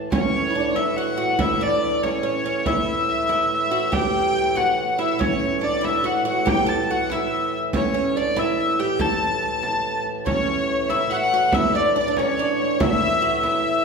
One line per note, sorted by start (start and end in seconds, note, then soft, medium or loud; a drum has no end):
0.10 5.18 A2 medium
0.10 5.17 E3 medium
0.10 0.50 C#4 medium
0.10 0.75 C#5 medium
0.10 frame drum medium
0.50 0.55 E4 soft
0.55 0.76 D4 medium
0.75 0.95 E4 medium
0.75 0.96 E5 medium
0.75 frame drum medium
0.96 1.16 F#4 medium
0.96 1.40 F#5 medium
0.96 frame drum soft
1.17 1.38 F#4 medium
1.39 1.60 E4 medium
1.39 1.62 E5 medium
1.39 frame drum medium
1.61 2.03 D4 medium
1.61 2.03 D5 medium
2.03 2.22 C#4 medium
2.03 2.23 C#5 medium
2.03 frame drum medium
2.23 2.44 C#4 medium
2.23 2.46 C#5 medium
2.23 frame drum soft
2.46 2.66 C#4 medium
2.46 2.66 C#5 medium
2.66 3.28 E4 medium
2.66 3.09 E5 loud
2.66 frame drum medium
3.09 3.31 E5 medium
3.29 3.71 E4 medium
3.29 3.93 E5 medium
3.29 frame drum medium
3.51 frame drum soft
3.71 3.92 F#4 medium
3.92 4.55 G4 medium
3.92 4.57 G5 loud
3.92 frame drum medium
4.55 4.98 F#4 medium
4.55 4.99 F#5 medium
4.55 frame drum medium
4.99 5.18 E4 medium
4.99 5.20 E5 medium
5.18 10.25 A2 medium
5.18 10.25 E3 medium
5.18 5.61 C#4 medium
5.18 5.63 C#5 loud
5.18 frame drum medium
5.61 5.83 D4 medium
5.61 5.84 D5 medium
5.81 6.04 E4 medium
5.81 6.05 E5 medium
5.81 frame drum medium
6.04 6.24 F#4 medium
6.04 6.27 F#5 medium
6.04 frame drum soft
6.25 6.45 F#4 medium
6.25 6.48 F#5 medium
6.46 6.66 G4 medium
6.46 6.68 G5 loud
6.46 frame drum medium
6.66 6.88 A4 medium
6.66 6.90 A5 medium
6.90 7.11 F#4 medium
6.90 7.12 F#5 medium
7.10 7.55 E4 medium
7.10 7.58 E5 medium
7.10 frame drum medium
7.31 frame drum soft
7.73 7.93 C#4 medium
7.73 8.16 C#5 loud
7.73 frame drum medium
7.94 8.16 C#4 medium
8.16 8.36 D4 medium
8.16 8.38 D5 medium
8.36 8.80 E4 medium
8.36 8.79 E5 medium
8.36 frame drum medium
8.59 frame drum soft
8.79 8.99 G4 medium
8.79 9.00 G5 medium
8.99 10.01 A4 medium
8.99 10.01 A5 loud
8.99 frame drum medium
9.63 frame drum medium
9.85 frame drum soft
10.06 frame drum soft
10.26 13.85 A2 medium
10.26 13.85 E3 medium
10.26 10.85 C#4 medium
10.26 10.90 C#5 medium
10.26 10.89 C#5 medium
10.26 frame drum medium
10.88 11.10 E4 medium
10.88 11.11 E5 medium
10.88 11.12 E5 medium
10.88 frame drum medium
11.10 11.32 F#4 medium
11.10 11.18 F#5 medium
11.10 11.54 F#5 medium
11.10 frame drum soft
11.16 11.24 E5 medium
11.23 11.53 F#5 medium
11.34 11.54 F#4 medium
11.51 11.75 E4 medium
11.51 11.74 E5 medium
11.51 11.75 E5 loud
11.51 frame drum medium
11.72 11.95 D4 medium
11.72 11.94 D5 medium
11.72 11.96 D5 medium
11.95 12.00 D4 medium
11.95 12.15 D5 medium
11.95 12.17 D5 medium
12.01 12.06 D4 medium
12.08 12.18 D4 medium
12.16 12.39 C#4 medium
12.16 12.36 C#5 medium
12.16 12.60 C#5 medium
12.16 frame drum medium
12.37 12.80 D4 medium
12.37 12.47 D5 medium
12.37 frame drum soft
12.59 12.78 C#5 medium
12.59 12.81 C#5 medium
12.80 13.22 E4 medium
12.80 13.39 E5 medium
12.80 13.44 E5 loud
12.80 frame drum medium
13.22 13.43 F#4 medium
13.42 13.85 E4 medium
13.42 13.85 E5 medium
13.42 frame drum medium
13.64 frame drum soft